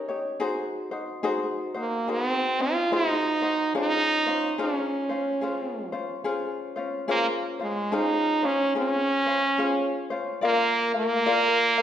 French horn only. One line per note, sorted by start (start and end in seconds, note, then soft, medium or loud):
1.79 2.12 A#3 medium
2.10 2.28 B3 medium
2.28 2.64 C4 medium
2.62 2.95 F4 loud
2.94 3.76 D#4 medium
3.77 4.55 D#4 loud
4.60 5.90 C#4 medium
7.11 7.27 A#3 loud
7.63 7.95 G#3 medium
7.94 8.47 D#4 loud
8.46 8.77 C#4 medium
8.77 10.08 C#4 loud
10.45 10.92 A#3 loud
10.96 11.82 A#3 loud